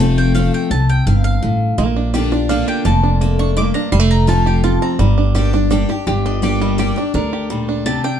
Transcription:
Already playing: F1 F2 A5
0.00 F3 A3 C4 F4
0.18 G5
0.34 F3 A3 C4 F4 F5
0.54 G5
0.71 C2 C3 A5
0.90 G5
1.06 G1 G2 F5
1.24 F5
1.42 A1 A2
1.78 A#1 A#2 G#3
1.85 A#3
1.96 D4
2.14 D3 A#3 D4 F4 G4
2.32 D4 F4
2.49 D3 A#3 D4 F4 F5
2.68 G4 G5
2.85 F1 F2 A#3 A5
3.04 D4
3.21 A3 A#3
3.39 D4 C#6
3.57 G2 G#3 D6
3.64 A#3
3.74 D4 A#5
3.92 F1 F2 G3 C6
4.00 A3
4.11 A#5
4.27 F3 A3 C4 F4 A5
4.46 G4 G5
4.63 F2 F4 A5
4.82 C4 A#5
4.99 G1 G2 G3
5.18 D4
5.35 G3 A#3 D4 G4
5.53 D4 G4
5.70 G3 A#3 D4 G4
5.89 D4 G4
6.07 G1 G2 D4 G4
6.26 D4 D#5
6.42 G3 A#3 D4 G4 D5
6.61 G3 D#5
6.78 G3 A#3 D4 G4 D5
6.96 D4 G4
7.14 D2 D3 D4 A#4
7.33 G4
7.50 A#2 G3
7.69 D4
7.86 C3 G4 A5
8.04 D4 G5

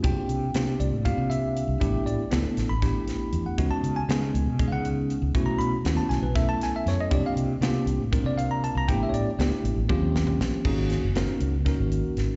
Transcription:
0.03 C2 A#3 C4 D4 F4 G4 G5, kick, closed hi-hat
0.29 C3, closed hi-hat
0.54 C3 A#3 C4 D4 F4 G4, snare, closed hi-hat
0.79 C2 D5, closed hi-hat
0.93 A2
1.05 A#3 C4 D4 F4 G4 F5, kick, closed hi-hat
1.18 C3
1.30 E5, closed hi-hat
1.57 closed hi-hat
1.68 C2
1.80 A1 A3 B3 D4 E4 G4, kick, closed hi-hat
2.06 A2 D5, closed hi-hat
2.31 C#2 A3 B3 D4 E4 A4, snare, closed hi-hat
2.45 muted fretless electric bass stroke
2.57 A1, snare, closed hi-hat
2.69 A1 B5
2.82 A3 B3 D4 E4 G4, kick, snare, closed hi-hat
3.08 snare, closed hi-hat
3.33 E2, closed hi-hat
3.46 F#5, muted fretless electric bass stroke
3.58 C#2 G#3 B3 C#4 D#4 F#4, kick, closed hi-hat
3.71 A5
3.83 C#3, closed hi-hat
3.96 G#5
4.08 C#3 G#3 B3 C#4 D#4 G#4, snare, closed hi-hat
4.34 C#2, closed hi-hat
4.46 B2
4.59 G#3 B3 C#4 D#4 G#4, kick, closed hi-hat
4.68 C#3 F5
4.72 F#5
4.85 closed hi-hat
5.10 closed hi-hat
5.22 C#2
5.35 B1 A3 B3 C#4 E4 F#4, kick, closed hi-hat
5.46 A#5
5.59 B2 B5, closed hi-hat
5.85 D#2 A3 B3 C#4 E4 F#4, snare, closed hi-hat
5.97 A5, muted fretless electric bass stroke
6.09 B1 G#5, snare, closed hi-hat
6.22 B1 B4
6.35 A3 B3 C#4 E4 A4 E5, kick, snare, closed hi-hat
6.49 A5
6.61 G#5, snare, closed hi-hat
6.76 E5
6.86 F#2 C#5, snare, closed hi-hat
6.98 D#5, muted fretless electric bass stroke
7.11 C2 A#3 C4 D4 F4 G4 D5, kick, closed hi-hat
7.26 F5
7.36 C3, closed hi-hat
7.61 C3 A#3 C4 D4 F4 G4, snare, closed hi-hat
7.86 C2, closed hi-hat
7.98 A2
8.12 A#3 C4 D4 F4 A#4, kick, closed hi-hat
8.24 C3 D5
8.38 F5, closed hi-hat
8.51 A#5
8.64 A5, closed hi-hat
8.75 C2 A#5
8.88 A1 A3 B3 D4 E4 G4 G5, kick, closed hi-hat
9.03 E5
9.09 A2 C#5
9.14 D5, closed hi-hat
9.39 C#2 A3 B3 D4 E4 G4, snare, closed hi-hat
9.51 muted fretless electric bass stroke
9.63 A1, closed hi-hat
9.76 A1
9.89 D#2 A#3 C4 C#4 F4 G4, kick, high tom
10.16 snare
10.27 mid tom
10.39 A#1, snare
10.53 muted fretless electric bass stroke
10.65 G#1 A#3 C#4 D#4 F#4 G#4, kick, crash
10.90 snare, closed hi-hat
11.03 F#1
11.15 A#3 C#4 D#4 F#4 A#4, snare, closed hi-hat
11.40 C#2, closed hi-hat
11.65 A#3 C#4 D#4 F#4 A#4, kick, snare, closed hi-hat
11.78 G#1
11.92 closed hi-hat
12.16 G#1, snare, closed hi-hat

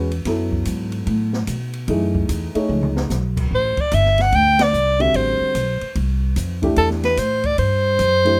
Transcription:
Already playing: E2
0.11 ride
0.25 F#2 F#3 B3 E4 A4, snare, ride
0.52 kick
0.65 G#2, hi-hat pedal, ride
0.92 ride
1.07 A2, ride
1.33 snare
1.47 B2, hi-hat pedal, ride
1.73 ride
1.88 F#2 E3 A3 D#4 G#4, ride
2.15 kick
2.29 E2, hi-hat pedal, ride
2.55 A3 D#4 G#4 C#5, muted upright bass stroke, ride
2.69 C#2, high tom
2.83 mid tom
2.97 snare
3.10 B1, snare, hi-hat pedal
3.37 kick, crash
3.51 A1 C5
3.77 D5, muted upright bass stroke, kick, ride
3.91 G1 E5, hi-hat pedal, ride
4.05 snare
4.18 F#5, snare, ride
4.32 D2 G5, ride
4.59 D5, snare, ride
4.73 C2, hi-hat pedal
4.99 D3 G3 C4 F#4 E5, ride
5.14 A1 C5, ride
5.41 muted upright bass stroke
5.55 B1, hi-hat pedal, ride
5.81 muted upright bass stroke, ride
5.95 C2, ride
6.36 F2, hi-hat pedal, ride
6.62 E3 A3 D4 G4, kick, ride
6.76 E2 A4, ride
6.90 snare
7.03 B4, snare, ride
7.17 A2 C5, hi-hat pedal, ride
7.43 D5, kick, ride
7.58 G2 C5, ride
7.99 F#2, hi-hat pedal, ride
8.25 E3 A3 D4 G4, ride

